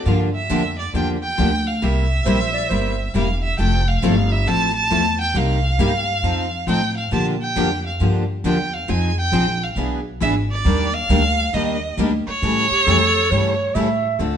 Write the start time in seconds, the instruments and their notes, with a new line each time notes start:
0.06 upright bass G2, steel-string acoustic guitar D3 F3 A#3 D4 G4, violin F5
0.35 violin E5
0.50 upright bass F2, steel-string acoustic guitar D3 F3 A#3 D4 G4
0.79 violin D5
0.93 upright bass E2, steel-string acoustic guitar D3 F3 A#3 D4 G4, violin G5
1.23 violin G5
1.38 upright bass D2, steel-string acoustic guitar D3 F3 A#3 D4 G4
1.67 violin F5
1.82 upright bass C2, steel-string acoustic guitar C3 G3 A#3 E4 G4, violin E5
2.26 upright bass A#1, steel-string acoustic guitar C3 G3 A#3 E4 G4, clarinet C5
2.53 clarinet D5
2.69 upright bass G1, steel-string acoustic guitar C3 G3 A#3 E4 G4, clarinet C5
3.14 upright bass E1, steel-string acoustic guitar C3 G3 A#3 E4 G4, violin F5
3.44 violin E5
3.59 upright bass F1, steel-string acoustic guitar F3 A3 C4 E4 A4, violin G5
3.88 violin F5
4.03 upright bass G1, steel-string acoustic guitar F3 A3 C4 E4 A4
4.32 violin E5
4.47 upright bass A1, steel-string acoustic guitar F3 A3 C4 E4 A4, violin A5
4.76 violin A5
4.90 upright bass E2, steel-string acoustic guitar F3 A3 C4 E4 A4
5.21 violin G5
5.34 upright bass C2, steel-string acoustic guitar C3 G3 A#3 D#4 G4, violin F5
5.79 upright bass G2, steel-string acoustic guitar C3 G3 A#3 D#4 G4
6.23 upright bass F2, steel-string acoustic guitar F3 C4 D#4 A4
6.67 upright bass A2, steel-string acoustic guitar F3 C4 D#4 A4, violin G5
6.97 violin F5
7.12 upright bass A#2, steel-string acoustic guitar D3 F3 A#3 D4 G4, violin A5
7.42 violin G5
7.56 upright bass F2, steel-string acoustic guitar D3 F3 A#3 D4 G4
7.86 violin F5
8.00 upright bass G2, steel-string acoustic guitar D3 F3 A#3 D4 G4
8.44 upright bass E2, steel-string acoustic guitar D3 F3 A#3 D4 G4, violin G5
8.74 violin F5
8.88 upright bass F2, steel-string acoustic guitar F3 C4 D#4 G#4, violin G#5
9.19 violin G5
9.32 upright bass A#1, steel-string acoustic guitar F3 C4 D#4 G#4
9.63 violin F5
9.76 upright bass B1, steel-string acoustic guitar E3 B3 D4 G#4 B4
10.20 upright bass G#1, steel-string acoustic guitar E3 B3 D4 G#4 B4, violin E5
10.52 violin D5
10.65 upright bass D#2, steel-string acoustic guitar D#3 G3 A#3 D4 G4
10.94 violin F5
11.09 upright bass D2, steel-string acoustic guitar D#3 G3 A#3 D4 G4
11.54 upright bass D#2, steel-string acoustic guitar D#3 G3 A#3 D4 G4, violin D#5
11.97 upright bass D2, steel-string acoustic guitar D#3 G3 A#3 D4 G4
12.27 violin C#5, muted upright bass stroke
12.42 upright bass A2, steel-string acoustic guitar C#3 E3 G3 A3 C#4 E4 G4 A4
12.70 clarinet G4, muted upright bass stroke
12.86 upright bass F2, steel-string acoustic guitar C#3 E3 G3 A3 C#4 E4 G4 A4, clarinet A4
13.30 upright bass G2, steel-string acoustic guitar C#3 E3 G3 A3 C#4 E4 G4 A4, clarinet C#5
13.75 upright bass A2, steel-string acoustic guitar C#3 E3 G3 A3 C#4 E4 G4 A4, clarinet E5
14.19 upright bass D2, steel-string acoustic guitar D3 F3 A3 C4 D4 F4 A4